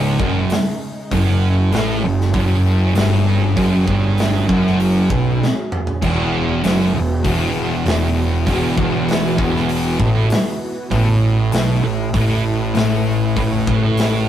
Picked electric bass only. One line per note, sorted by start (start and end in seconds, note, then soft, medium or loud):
0.00 0.16 C#1 loud
0.20 0.49 F#1 loud
1.12 1.69 F#1 loud
1.72 2.01 A1 loud
2.03 2.32 F#1 medium
2.34 2.92 F#1 loud
2.96 3.53 G1 medium
3.57 3.85 F#1 loud
3.87 4.45 G1 medium
4.49 5.06 F#1 loud
5.10 5.38 B1 loud
6.03 6.59 E1 medium
6.63 6.92 F#1 loud
6.94 7.22 E1 medium
7.24 7.82 E1 loud
7.86 8.43 E1 loud
8.47 8.75 E1 loud
8.78 9.35 E1 medium
9.38 9.96 E1 loud
9.99 10.28 A1 loud
10.91 11.49 A1 medium
11.53 11.81 B1 loud
11.83 12.12 A1 medium
12.14 12.72 A1 medium
12.75 13.33 A1 medium
13.37 13.66 A1 loud
13.67 14.25 A1 medium